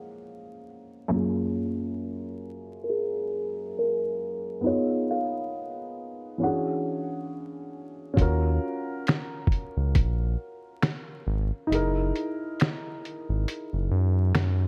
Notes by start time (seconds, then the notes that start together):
Already playing: F3 A#3 C#4 G#4 F#5
1.08 F#2 A#3 C#4
1.14 F4 G#4
2.84 A#4
2.90 G#4
3.79 A#4
4.61 B3 D#4
4.66 F4 G#4 C#5
5.11 F5
6.38 E3 C#4 D4
6.43 F#4 G#4 F#5
8.14 D#2 C#4 F4, kick
8.18 F#4 A#4, closed hi-hat
9.07 finger snap, snare, closed hi-hat
9.47 kick
9.52 closed hi-hat
9.77 C#2
9.95 A#1, kick, closed hi-hat
10.82 finger snap, snare, closed hi-hat
11.27 G#1
11.67 F#1 D#4 E4
11.72 G#4 A#4, closed hi-hat
12.16 closed hi-hat
12.60 finger snap, snare, closed hi-hat
13.05 closed hi-hat
13.29 G#1
13.48 closed hi-hat
13.73 F#1
13.91 F#2
14.35 F#2, finger snap, snare, closed hi-hat